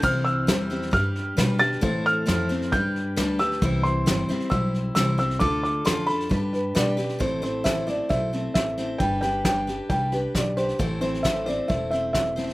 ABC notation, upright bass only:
X:1
M:4/4
L:1/8
Q:1/4=134
K:Am
V:1 name="Upright bass" clef=bass
C,,2 E,,2 G,,2 B,,2 | A,,2 F,,2 G,,2 D,,2 | C,,2 G,,, z B,,,2 C,,2 | D,,2 F,,2 G,,2 B,,2 |
A,,,4 B,,,2 A,,,2 | G,,,4 C,,2 B,,,2 | A,,,4 E,,,4 |]